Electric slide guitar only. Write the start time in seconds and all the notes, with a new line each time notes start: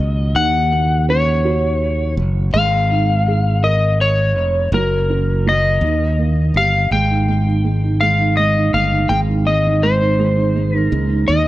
Already playing: D#5
0.36 F#5
1.10 C#5
2.54 F5
3.64 D#5
4.01 C#5
4.74 A#4
5.49 D#5
6.57 F5
6.92 G5
8.01 F5
8.37 D#5
8.74 F5
9.09 G5
9.47 D#5
9.83 C5
10.78 A#4
11.28 D#5